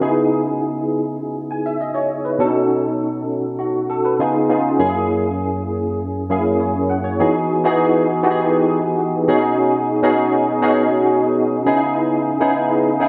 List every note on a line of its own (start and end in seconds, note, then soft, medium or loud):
0.00 0.88 C#3 medium
0.00 0.88 B3 medium
0.00 0.88 D#4 medium
0.00 0.88 E4 medium
0.00 0.15 F#4 medium
0.00 0.88 G#4 medium
1.51 1.65 G#5 medium
1.66 1.80 E5 medium
1.81 1.95 D#5 medium
1.94 2.23 C#5 medium
2.25 2.53 B4 medium
2.38 3.26 B2 medium
2.38 3.27 C#4 medium
2.38 2.47 D4 medium
2.38 3.27 F#4 medium
2.38 3.27 A4 medium
2.46 3.30 D#4 medium
3.59 3.88 F#4 medium
3.90 4.04 A4 medium
4.05 4.33 B4 medium
4.19 4.43 C#3 medium
4.19 4.43 B3 medium
4.19 4.44 D#4 medium
4.19 4.44 F4 medium
4.19 4.44 G#4 medium
4.49 4.71 C#3 medium
4.49 4.71 B3 medium
4.49 4.71 D#4 medium
4.49 4.72 F4 medium
4.49 4.72 G#4 medium
4.79 5.66 F#2 medium
4.79 5.66 A#3 medium
4.79 5.66 C#4 medium
4.79 5.66 E4 medium
4.79 5.66 G#4 medium
6.29 6.73 F#2 medium
6.29 6.73 A#3 medium
6.29 6.73 C#4 medium
6.29 6.73 E4 medium
6.29 6.73 G#4 medium
6.60 6.88 C#5 medium
6.90 7.03 F#5 medium
7.04 7.32 C#5 medium
7.19 7.52 E3 medium
7.19 7.52 B3 medium
7.19 7.52 D#4 medium
7.19 7.52 F#4 medium
7.19 7.52 G#4 medium
7.64 8.07 E3 medium
7.64 8.07 B3 medium
7.64 8.07 D#4 medium
7.64 8.07 F#4 medium
7.64 8.08 G#4 medium
8.23 9.10 E3 medium
8.23 9.10 B3 medium
8.23 9.10 D#4 medium
8.23 9.10 F#4 medium
8.23 8.30 G4 medium
8.30 9.13 G#4 medium
9.28 9.87 B2 medium
9.28 9.87 C#4 medium
9.28 9.88 D#4 medium
9.28 9.87 F#4 medium
9.28 9.88 G#4 loud
10.02 10.45 B2 medium
10.02 10.46 C#4 medium
10.02 10.46 D#4 medium
10.02 10.46 F#4 medium
10.02 10.46 G#4 loud
10.61 11.48 B2 medium
10.61 11.48 C#4 medium
10.61 11.48 D#4 medium
10.61 11.48 F#4 medium
10.61 11.49 G#4 loud
11.66 12.26 C#3 medium
11.66 12.26 B3 medium
11.66 12.26 D#4 medium
11.66 12.26 E4 medium
11.66 12.26 G#4 medium
12.40 12.83 C#3 medium
12.40 12.84 B3 medium
12.40 12.84 D#4 medium
12.40 12.84 E4 medium
12.40 12.84 G#4 medium
12.99 13.09 C#3 medium
12.99 13.09 B3 medium
12.99 13.09 D#4 medium
12.99 13.09 E4 medium
12.99 13.09 G#4 medium